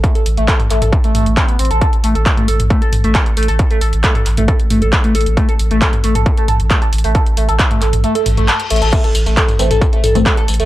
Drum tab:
CC |--------------------------------|--------------------------------|--------------------------------|--------------------------------|
HH |x-x-o-x-x-x-o-x-x-x-o-x-x-x-oxx-|x-x-o-x-x-x-o-x-x-x-o-x-x-x-oxo-|x-x-o-x-x-x-o-x-x-x-o-x-x-x-oxx-|x-x-o-x-x-x-o-x-x-x-o-x-x-x-oxo-|
TB |--------------------------------|--------------------------------|--------------------------------|--------------------------------|
CP |--------x---x-----------x-------|--------x---------------x-------|--------x---x-----------x-------|--------x---------------x-------|
T2 |----------o---o-----o-----------|----------o---o-----o-----------|----------o---o-----o-----------|----------o---o-----o-----------|
BD |o-------o-------o-------o-------|o-------o-------o-------o-------|o-------o-------o-------o-------|o-------o-------o-------o-------|

CC |--------------------------------|x-------------------------------|
HH |x-x-o-x-x-x-o-x-x-x-o-x-o-x-oxx-|x-x-o-x-x-x-o-x-x-x-o-x-x-x-oxx-|
TB |--------------------------------|x-x-x-x-x-x-x-x-x---x-x-x---x-x-|
CP |--------x---x-----------x-------|--------x---------------x-------|
T2 |----------o---o-----o-o---------|----------o---o-----o-o---------|
BD |o-------o-----------------------|o-------o-------o-------o-------|